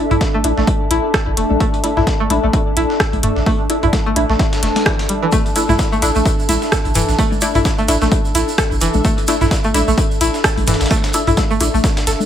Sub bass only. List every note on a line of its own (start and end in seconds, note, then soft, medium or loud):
0.11 0.17 A1 medium
0.44 0.52 A1 medium
0.58 0.64 A1 medium
0.91 0.99 A1 medium
1.27 1.33 A1 medium
1.37 1.45 E1 medium
1.51 1.57 A1 medium
1.97 2.03 A1 loud
2.30 2.38 A1 loud
2.44 2.50 A1 medium
2.77 2.85 A1 medium
3.13 3.19 A1 medium
3.23 3.31 E1 medium
3.37 3.43 A1 medium
3.83 3.89 A1 loud
4.16 4.24 A1 loud
4.29 4.36 A1 medium
4.63 4.71 E1 medium
5.69 5.75 A1 loud
6.02 6.10 A1 medium
6.16 6.22 A1 medium
6.49 6.57 A1 medium
6.85 6.91 A1 medium
6.95 7.03 E1 medium
7.09 7.15 A1 medium
7.55 7.61 A1 loud
7.88 7.96 A1 loud
8.02 8.08 A1 medium
8.35 8.43 A1 medium
8.71 8.77 A1 medium
8.81 8.89 E1 medium
8.95 9.01 A1 medium
9.41 9.47 A1 loud
9.74 9.82 A1 loud
9.88 9.94 A1 medium
10.21 10.29 A1 medium
10.57 10.63 A1 medium
10.67 10.75 E1 medium
10.81 10.87 A1 medium
11.27 11.33 A1 loud
11.61 11.69 A1 loud
11.74 11.80 A1 medium
12.07 12.15 G1 loud